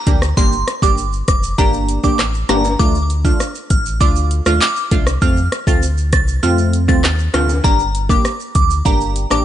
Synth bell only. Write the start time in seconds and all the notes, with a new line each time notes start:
Already playing: A#5
0.37 C6
0.83 D6
1.28 D6
1.58 A#5
2.04 D6
2.49 A#5
2.79 D6
3.25 F6
3.71 F6
4.01 D6
4.46 F6
4.61 D6
5.22 F6
5.67 A6
6.13 A6
6.43 F6
6.89 A6
7.34 F6
7.64 A#5
8.10 D6
8.55 D6
8.86 A#5
9.31 D6